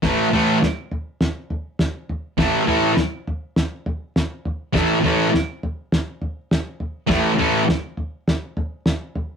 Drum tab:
SD |o-o-o-o-|o-o-o-o-|o-o-o-o-|o-o-o-o-|
FT |oooooooo|oooooooo|oooooooo|oooooooo|
BD |o-------|o-------|o-------|o-------|